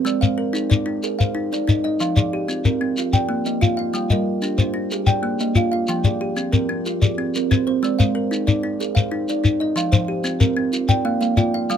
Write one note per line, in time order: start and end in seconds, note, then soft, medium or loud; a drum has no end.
0.00 0.22 C4 medium
0.00 0.21 C5 medium
0.05 0.38 G#3 medium
0.05 0.39 D5 medium
0.05 shekere medium
0.21 0.55 G#3 medium
0.21 0.71 C5 medium
0.21 0.70 F5 medium
0.21 shekere medium
0.38 0.87 A#4 medium
0.53 0.85 D#4 medium
0.53 1.02 G#4 medium
0.53 shekere medium
0.70 1.04 D#4 medium
0.70 1.19 D5 medium
0.70 shekere medium
0.86 1.19 D#4 medium
1.03 1.36 G#4 medium
1.03 1.52 A#4 medium
1.03 shekere medium
1.19 1.69 C5 medium
1.19 1.68 F5 medium
1.19 shekere medium
1.35 1.66 D#4 medium
1.53 1.84 D#4 medium
1.53 2.01 D5 medium
1.53 shekere medium
1.67 2.00 D#4 medium
1.67 2.17 D#5 medium
1.67 shekere medium
1.84 2.17 D#4 medium
1.84 2.17 D#5 medium
2.00 2.33 F3 medium
2.00 2.33 F5 medium
2.00 shekere medium
2.16 2.49 F3 medium
2.16 2.66 G#4 medium
2.16 2.65 D5 medium
2.16 shekere medium
2.33 2.82 G4 medium
2.48 2.80 C4 medium
2.48 2.97 F4 medium
2.48 shekere medium
2.65 2.98 C4 medium
2.65 3.14 A#4 medium
2.65 shekere medium
2.81 2.97 C4 medium
2.97 3.14 F4 medium
2.97 3.30 G4 medium
2.97 shekere medium
3.13 3.62 D5 medium
3.13 3.62 G5 medium
3.13 shekere medium
3.29 3.62 A#3 medium
3.46 3.78 A#3 medium
3.46 3.95 D#5 medium
3.46 shekere medium
3.61 3.94 F4 medium
3.61 4.11 F5 medium
3.61 shekere medium
3.77 4.11 F4 medium
3.77 4.10 F5 medium
3.94 4.27 G3 medium
3.94 4.27 G5 medium
3.94 shekere medium
4.10 4.44 G3 medium
4.10 4.60 A#4 medium
4.10 4.59 D#5 medium
4.10 shekere medium
4.42 4.72 D4 medium
4.42 4.91 G4 medium
4.42 shekere medium
4.58 4.92 D4 medium
4.58 5.07 C5 medium
4.58 shekere medium
4.74 4.91 D4 medium
4.91 5.08 G4 medium
4.91 5.24 G#4 medium
4.91 shekere medium
5.07 5.56 D5 medium
5.07 5.56 G5 medium
5.07 shekere medium
5.23 5.56 A#3 medium
5.40 5.73 A#3 medium
5.40 5.89 D#5 medium
5.40 shekere medium
5.55 5.88 F4 medium
5.55 6.05 F5 medium
5.55 shekere medium
5.72 6.05 F4 medium
5.72 6.04 F5 medium
5.88 6.21 F3 medium
5.88 6.21 G5 medium
5.88 shekere medium
6.04 6.37 F3 medium
6.04 6.53 G#4 medium
6.04 6.53 D5 medium
6.04 shekere medium
6.21 6.70 G4 medium
6.37 6.68 C4 medium
6.37 6.85 F4 medium
6.37 shekere medium
6.53 6.86 C4 medium
6.53 7.01 A#4 medium
6.53 shekere medium
6.69 7.02 C4 medium
6.86 7.18 F4 medium
6.86 7.34 G4 medium
6.86 shekere medium
7.02 7.51 G#4 medium
7.02 7.50 D5 medium
7.02 shekere medium
7.18 7.50 C4 medium
7.35 7.66 C4 medium
7.35 7.84 A#4 medium
7.35 shekere medium
7.51 7.83 C4 medium
7.51 7.99 C5 medium
7.51 shekere medium
7.67 7.99 C4 medium
7.67 7.99 C5 medium
7.83 8.15 G#3 medium
7.83 8.16 D5 medium
7.83 shekere medium
7.99 8.32 G#3 medium
7.99 8.48 C5 medium
7.99 8.47 F5 medium
7.99 shekere medium
8.15 8.63 A#4 medium
8.31 8.62 D#4 medium
8.31 8.79 G#4 medium
8.31 shekere medium
8.47 8.80 D#4 medium
8.47 8.96 D5 medium
8.47 shekere medium
8.63 8.96 D#4 medium
8.80 9.12 G#4 medium
8.80 9.29 A#4 medium
8.80 shekere medium
8.95 9.45 C5 medium
8.95 9.44 F5 medium
8.95 shekere medium
9.12 9.43 D#4 medium
9.29 9.60 D#4 medium
9.29 9.77 D5 medium
9.29 shekere medium
9.44 9.76 D#4 medium
9.44 shekere medium
9.60 9.93 D#4 medium
9.60 9.93 D#5 medium
9.76 10.08 F3 medium
9.76 10.09 F5 medium
9.76 shekere medium
9.92 10.25 F3 medium
9.92 10.41 C5 medium
9.92 shekere medium
10.08 10.57 G4 medium
10.24 10.55 C4 medium
10.24 10.72 F4 medium
10.24 shekere medium
10.40 10.73 C4 medium
10.40 10.89 A#4 medium
10.40 shekere medium
10.57 10.73 C4 medium
10.73 11.05 F4 medium
10.73 shekere medium
10.89 11.38 D5 medium
10.89 11.38 G5 medium
10.89 shekere medium
11.05 11.38 A#3 medium
11.05 11.20 F5 medium
11.21 11.54 A#3 medium
11.21 11.69 F5 medium
11.21 shekere medium
11.37 11.70 F4 medium
11.37 11.77 D5 medium
11.37 11.77 G5 medium
11.37 shekere medium
11.54 11.77 F4 medium
11.54 11.77 F5 medium
11.70 11.77 G3 medium
11.70 11.77 F5 medium
11.70 shekere medium